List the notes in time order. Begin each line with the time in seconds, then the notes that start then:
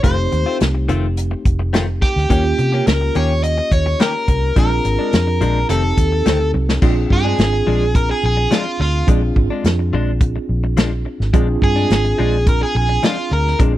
0.03 F1 D#3 A3 C4 D#4 F4 G4 C5, kick, closed hi-hat
0.18 muted clean electric guitar stroke
0.32 D#2, muted clean electric guitar stroke, closed hi-hat
0.46 A3 C4 F4
0.60 C2, muted clean electric guitar stroke, snare, closed hi-hat
0.74 muted clean electric guitar stroke
0.89 F1 D#3 A3 C4 F4, closed hi-hat
1.17 closed hi-hat
1.31 muted clean electric guitar stroke
1.45 F1, kick, closed hi-hat
1.59 muted clean electric guitar stroke
1.73 D#3 A3 C4 F4, snare, closed hi-hat
1.87 muted clean electric guitar stroke
2.02 G4, muted clean electric guitar stroke, kick, snare, closed hi-hat
2.16 D2, snare
2.29 D#2 D#3 A#3 C#4 F4 G4, kick, closed hi-hat
2.58 C3, muted clean electric guitar stroke, closed hi-hat
2.72 A#3 C#4 G4
2.87 C#2 A#4, muted clean electric guitar stroke, snare, closed hi-hat
3.01 muted clean electric guitar stroke
3.15 D#2 D#3 A#3 C#4 G4 C#5, closed hi-hat
3.43 D#5, closed hi-hat
3.58 muted clean electric guitar stroke
3.72 D#2 C#5, kick, closed hi-hat
3.86 muted clean electric guitar stroke
4.00 D#3 A#3 C#4 G4 A#4, snare, closed hi-hat
4.14 muted clean electric guitar stroke
4.28 C2, muted clean electric guitar stroke, kick, closed hi-hat
4.55 A#1 F3 G#3 C4 D4 F4 G#4 A#4, kick, closed hi-hat
4.71 muted clean electric guitar stroke
4.85 G#1, muted clean electric guitar stroke, closed hi-hat
4.99 G#3 D4
5.13 F2, muted clean electric guitar stroke, snare, closed hi-hat
5.27 muted clean electric guitar stroke
5.41 A#1 F3 G#3 D4, closed hi-hat
5.69 F1 D#3 A3 C4 D#4 G4 A4, closed hi-hat
5.84 muted clean electric guitar stroke
5.97 D#2, kick, closed hi-hat
6.12 muted clean electric guitar stroke
6.26 D2 D#3 A3 C4, snare, closed hi-hat
6.40 muted clean electric guitar stroke
6.54 C2, muted clean electric guitar stroke, high tom
6.69 snare
6.81 A#1 F3 G#3 C4 D4 F4 G#4, kick, crash
6.96 muted clean electric guitar stroke
7.10 G2 G#4, muted clean electric guitar stroke, kick
7.24 G#3 D4
7.38 G#1, muted clean electric guitar stroke, snare, closed hi-hat
7.53 muted clean electric guitar stroke
7.67 A#1 F3 G#3 D4
7.95 A#4, kick, closed hi-hat
8.09 G#4, muted clean electric guitar stroke
8.23 A#1 G#4
8.37 muted clean electric guitar stroke
8.51 F3 G#3 D4 F4, snare, closed hi-hat
8.66 muted clean electric guitar stroke
8.80 D2 F4, muted clean electric guitar stroke, snare
9.07 A#1 F3 G#3 C4 D4 F4 G#4, kick, closed hi-hat
9.23 muted clean electric guitar stroke
9.36 G#1, muted clean electric guitar stroke, kick
9.50 G#3 D4
9.64 F2, muted clean electric guitar stroke, snare, closed hi-hat
9.79 muted clean electric guitar stroke
9.92 A#1 F3 G#3 D4
10.21 kick, closed hi-hat
10.36 muted clean electric guitar stroke
10.49 A#1
10.64 muted clean electric guitar stroke
10.77 F3 G#3 D4, snare, closed hi-hat
10.92 muted clean electric guitar stroke
11.05 muted clean electric guitar stroke
11.20 G#1, snare
11.33 A#1 F3 G#3 C4 D4 F4 G#4, kick, closed hi-hat
11.48 muted clean electric guitar stroke
11.62 G2 G#4, muted clean electric guitar stroke, kick
11.76 G#3 D4
11.90 G#1, muted clean electric guitar stroke, snare, closed hi-hat
12.05 muted clean electric guitar stroke
12.18 A#1 F3 G#3 D4
12.47 A#4, kick, closed hi-hat
12.61 G#4, muted clean electric guitar stroke
12.75 A#1 G#4
12.89 muted clean electric guitar stroke
13.03 F3 G#3 D4 F4, snare, closed hi-hat
13.17 muted clean electric guitar stroke
13.31 D2 A#4, muted clean electric guitar stroke
13.47 snare
13.59 A#1 F3 G#3 C4 D4 F4 G#4, kick, closed hi-hat
13.74 muted clean electric guitar stroke